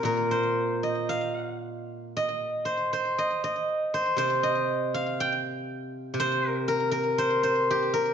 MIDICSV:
0, 0, Header, 1, 2, 480
1, 0, Start_track
1, 0, Tempo, 1043478
1, 23, Time_signature, 2, 2, 24, 8
1, 1463, Tempo, 1001669
1, 3838, End_track
2, 0, Start_track
2, 0, Title_t, "Guzheng"
2, 0, Program_c, 0, 107
2, 0, Note_on_c, 0, 72, 74
2, 14, Note_on_c, 0, 46, 50
2, 23, Note_on_c, 0, 70, 87
2, 141, Note_off_c, 0, 72, 0
2, 143, Note_on_c, 0, 72, 75
2, 383, Note_on_c, 0, 75, 67
2, 502, Note_on_c, 0, 77, 88
2, 995, Note_off_c, 0, 75, 0
2, 996, Note_on_c, 0, 75, 88
2, 1000, Note_off_c, 0, 70, 0
2, 1053, Note_off_c, 0, 72, 0
2, 1220, Note_on_c, 0, 72, 72
2, 1268, Note_off_c, 0, 77, 0
2, 1345, Note_off_c, 0, 72, 0
2, 1347, Note_on_c, 0, 72, 74
2, 1459, Note_off_c, 0, 46, 0
2, 1463, Note_off_c, 0, 75, 0
2, 1465, Note_on_c, 0, 75, 86
2, 1584, Note_off_c, 0, 75, 0
2, 1586, Note_on_c, 0, 75, 78
2, 1825, Note_off_c, 0, 72, 0
2, 1827, Note_on_c, 0, 72, 82
2, 1935, Note_on_c, 0, 48, 51
2, 1939, Note_off_c, 0, 72, 0
2, 1941, Note_on_c, 0, 72, 98
2, 2061, Note_off_c, 0, 75, 0
2, 2063, Note_on_c, 0, 75, 88
2, 2308, Note_on_c, 0, 77, 87
2, 2432, Note_on_c, 0, 79, 106
2, 2874, Note_off_c, 0, 48, 0
2, 2880, Note_on_c, 0, 48, 64
2, 2890, Note_off_c, 0, 72, 0
2, 2909, Note_on_c, 0, 72, 115
2, 2919, Note_off_c, 0, 75, 0
2, 3048, Note_off_c, 0, 72, 0
2, 3048, Note_on_c, 0, 70, 115
2, 3106, Note_off_c, 0, 77, 0
2, 3140, Note_off_c, 0, 70, 0
2, 3140, Note_on_c, 0, 70, 91
2, 3175, Note_off_c, 0, 79, 0
2, 3250, Note_off_c, 0, 70, 0
2, 3252, Note_on_c, 0, 70, 85
2, 3381, Note_on_c, 0, 72, 105
2, 3499, Note_off_c, 0, 72, 0
2, 3501, Note_on_c, 0, 72, 88
2, 3631, Note_on_c, 0, 67, 92
2, 3740, Note_off_c, 0, 70, 0
2, 3742, Note_on_c, 0, 70, 99
2, 3838, Note_off_c, 0, 48, 0
2, 3838, Note_off_c, 0, 67, 0
2, 3838, Note_off_c, 0, 70, 0
2, 3838, Note_off_c, 0, 72, 0
2, 3838, End_track
0, 0, End_of_file